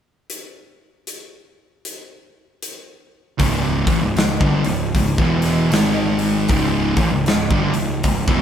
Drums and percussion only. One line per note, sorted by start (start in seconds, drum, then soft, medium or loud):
0.30 closed hi-hat medium
1.07 closed hi-hat medium
1.85 closed hi-hat medium
2.62 closed hi-hat medium
3.40 kick loud
3.40 open hi-hat medium
3.87 kick loud
3.87 open hi-hat medium
4.17 snare loud
4.17 open hi-hat medium
4.41 kick loud
4.64 open hi-hat medium
4.95 kick medium
4.95 open hi-hat medium
5.18 kick loud
5.42 snare soft
5.42 open hi-hat medium
5.72 snare loud
5.72 open hi-hat medium
6.19 open hi-hat soft
6.49 kick loud
6.49 open hi-hat medium
6.97 kick loud
6.97 open hi-hat medium
7.26 snare medium
7.26 open hi-hat medium
7.51 kick loud
7.74 open hi-hat medium
8.04 kick medium
8.04 open hi-hat medium
8.28 kick loud